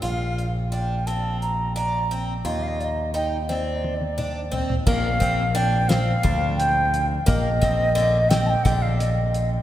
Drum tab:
CC |--------------|--------------|x-------------|--------------|
HH |x-x-x-x-x-x-x-|x-x-x---------|--x-x-x-x-x-x-|x-x-x-x-x-x-x-|
SD |--------------|------o-------|------o-------|--o---o---o---|
T1 |--------------|--------oo----|--------------|--------------|
T2 |--------------|----------o---|--------------|--------------|
FT |--------------|------------oo|--------------|--------------|
BD |--------------|--------------|o-o-----o-----|o-o-----o-----|